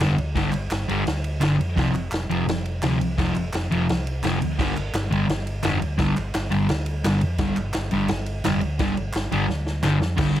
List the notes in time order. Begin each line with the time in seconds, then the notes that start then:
0.00 F1 G2 D3 G3, snare, ride
0.17 D2, ride
0.35 G1 G2 D3 G3, kick, snare, ride
0.52 G1, clap, ride
0.71 G1, snare, clap, ride
0.89 G1 G2 D3 G3, ride
1.07 D2, snare, ride
1.24 ride
1.41 G1 G2 D3 G3, snare, clap, ride
1.59 F2, ride
1.77 F1 F2 C3 F3, kick, snare, ride
1.94 F1, clap, ride
2.11 F1, snare, clap, ride
2.29 F1 F2 C3 F3, ride
2.46 F1, snare, ride
2.65 ride
2.82 D2 F2 C3 F3, snare, clap, ride
3.00 C2, ride
3.18 F1 F2 C3 F3, kick, snare, ride
3.35 F1, clap, ride
3.53 F1, snare, clap, ride
3.71 F1 F2 C3 F3, ride
3.89 C2, snare, ride
4.07 ride
4.23 F1 F2 C3 F3, snare, clap, ride
4.41 D2, ride
4.59 G1 G2 D3 G3, kick, snare, crash
4.76 G1, clap, ride
4.93 G1, snare, clap, ride
5.11 G1 G2 D3 G3, ride
5.28 G1, snare, ride
5.47 ride
5.63 F1 G2 D3 G3, snare, clap, ride
5.82 D2, ride
5.98 G1 G2 D3 G3, kick, snare, ride
6.17 G1, clap, ride
6.34 G1, snare, clap, ride
6.51 G1 G2 D3 G3, ride
6.69 D2, snare, ride
6.86 ride
7.04 G1 G2 D3 G3, snare, clap, ride
7.21 F2, ride
7.38 G1 G2 D3 G3, kick, snare, ride
7.56 G1, clap, ride
7.73 G1, snare, clap, ride
7.91 G1 G2 D3 G3, ride
8.08 G1, snare, ride
8.26 ride
8.44 F1 G2 D3 G3, snare, clap, ride
8.61 D2, ride
8.79 G1 G2 D3 G3, kick, snare, ride
8.97 G1, ride
9.13 G1, snare, clap, ride
9.31 G1 G2 D3 G3, ride
9.47 D2, snare
9.67 snare
9.82 G1 G2 D3 G3, snare, clap
10.00 F2, snare
10.17 G1 G2 D3 G3, kick, snare, crash
10.36 ride